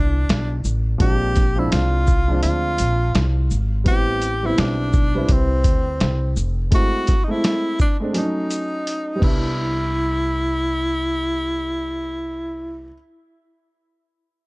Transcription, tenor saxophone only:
0.00 0.61 D4 medium
1.01 1.60 G4 loud
1.59 1.73 E4 medium
1.72 2.42 F4 medium
2.43 3.46 F4 medium
3.87 4.47 G4 loud
4.46 4.61 E4 medium
4.59 5.33 D4 medium
5.32 6.37 C4 medium
6.75 7.26 F#4 loud
7.24 7.33 D#4 medium
7.31 7.79 E4 medium
7.81 7.97 D4 medium
8.18 9.19 D#4 medium
9.24 12.92 E4 medium

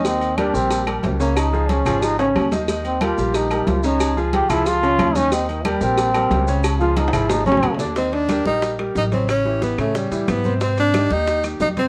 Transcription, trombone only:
0.05 0.40 C4 medium
0.38 0.56 D4 medium
0.54 0.87 C4 loud
1.20 1.38 A#3 medium
1.37 1.71 D#4 medium
1.70 2.04 C#4 medium
2.03 2.19 D#4 medium
2.19 2.50 C#4 medium
2.86 3.04 C4 medium
3.03 3.37 F4 loud
3.35 3.70 D#4 medium
3.68 3.86 F4 medium
3.84 4.17 D#4 loud
4.34 4.51 G4 loud
4.50 4.68 E4 loud
4.67 5.18 F4 loud
5.16 5.34 C#4 loud
5.33 5.48 C4 medium
5.49 5.67 D#3 medium
5.66 5.83 G3 medium
5.82 6.64 C4 loud
6.80 6.99 F4 loud
6.97 7.14 D#4 medium
7.13 7.32 E4 loud
7.30 7.45 D#4 medium
7.46 7.77 C#4 loud

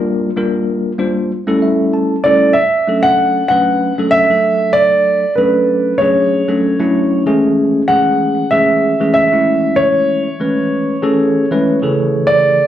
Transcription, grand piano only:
2.24 2.57 D5 medium
2.53 3.04 E5 medium
3.03 3.47 F#5 medium
3.48 4.08 F#5 medium
4.11 4.77 E5 loud
4.73 5.33 D5 loud
5.35 6.02 B4 medium
5.98 7.21 C#5 medium
7.88 8.53 F#5 medium
8.51 9.12 E5 medium
9.14 9.79 E5 medium
9.76 12.36 C#5 medium
12.27 12.67 D5 medium

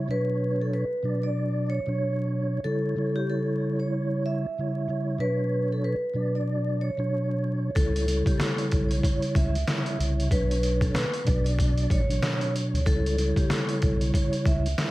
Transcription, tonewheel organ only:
0.08 0.84 B2 loud
0.08 0.84 F#3 medium
0.08 0.85 D4 medium
0.08 0.85 C#5 loud
1.03 1.79 B2 loud
1.03 1.79 F#3 medium
1.03 1.80 D4 medium
1.03 1.80 D5 loud
1.86 2.59 B2 loud
1.86 2.59 F#3 medium
1.86 2.60 D4 medium
1.86 2.60 C#5 loud
2.64 2.94 C#3 loud
2.64 2.95 G3 medium
2.64 2.95 E4 medium
2.64 2.96 C#5 loud
2.96 4.45 C#3 loud
2.96 4.46 G3 medium
2.96 4.46 E4 medium
2.96 4.47 C#5 loud
4.58 4.87 C#3 medium
4.58 4.87 G3 medium
4.58 4.88 E4 medium
4.58 4.88 C#5 medium
4.88 5.18 C#3 medium
4.88 5.18 G3 medium
4.88 5.19 E4 medium
4.88 5.19 C#5 medium
5.19 5.94 B2 loud
5.19 5.95 F#3 medium
5.19 5.95 D4 medium
5.19 5.96 C#5 loud
6.14 6.90 B2 loud
6.14 6.90 F#3 medium
6.14 6.91 D4 medium
6.14 6.91 D5 loud
6.97 7.70 B2 loud
6.97 7.70 F#3 medium
6.97 7.71 D4 medium
6.97 7.71 C#5 loud
7.75 8.05 C#3 loud
7.75 8.06 G3 medium
7.75 8.06 E4 medium
7.75 8.06 C#5 loud
8.07 9.56 C#3 loud
8.07 9.57 G3 medium
8.07 9.57 E4 medium
8.07 9.57 C#5 loud
9.68 9.97 C#3 medium
9.68 9.98 G3 medium
9.68 9.98 E4 medium
9.68 9.99 C#5 medium
9.98 10.29 C#3 medium
9.98 10.29 G3 medium
9.98 10.29 E4 medium
9.98 10.30 C#5 medium
10.29 11.05 B2 loud
10.29 11.05 F#3 medium
10.29 11.06 D4 medium
10.29 11.06 C#5 loud
11.24 12.00 B2 loud
11.24 12.01 F#3 loud
11.24 12.01 D4 medium
11.24 12.02 D5 loud
12.08 12.80 B2 loud
12.08 12.81 F#3 medium
12.08 12.81 D4 medium
12.08 12.81 C#5 loud
12.85 13.16 C#3 loud
12.85 13.16 G3 medium
12.85 13.16 E4 medium
12.85 13.17 C#5 loud
13.17 14.67 C#3 loud
13.17 14.67 G3 medium
13.17 14.67 E4 medium
13.17 14.68 C#5 loud
14.79 14.91 C#3 medium
14.79 14.91 G3 medium
14.79 14.91 E4 medium
14.79 14.91 C#5 medium

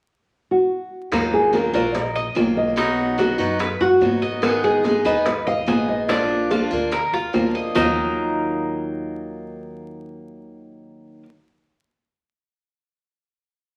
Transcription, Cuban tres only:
1.74 2.14 A#4 medium
2.16 2.36 D#5 medium
2.77 3.18 D#4 medium
3.18 3.59 F#4 medium
3.60 3.80 B4 medium
3.81 4.21 F#4 medium
4.22 4.62 D#5 medium
4.64 5.04 G#4 medium
5.06 5.46 B4 medium
5.47 5.67 D#5 medium
5.68 6.08 G#4 medium
6.09 6.50 D4 medium
6.51 6.91 F4 medium
6.93 7.13 A#4 medium
7.14 7.54 F4 medium
7.55 7.75 D#5 medium
7.75 11.22 D#4 medium
7.75 11.23 A#4 medium
7.75 11.23 D#5 medium

